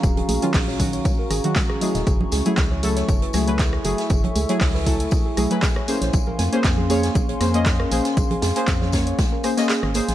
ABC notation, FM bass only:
X:1
M:4/4
L:1/16
Q:"Swing 16ths" 1/4=118
K:A#phr
V:1 name="FM bass" clef=bass
D,,, z A,,, z A,,,4 z2 G,,, z4 D,,, | F,,, z C,, z C,,4 F,,, z C,,4 F,,, z | F,,, z C,, z C,,4 z2 B,,, z4 A,,, | A,,, z E,, z E,,4 A,,, z E,,4 A,,, z |
A,,, z E,, z E,,4 z4 z G,,, z A,,, |]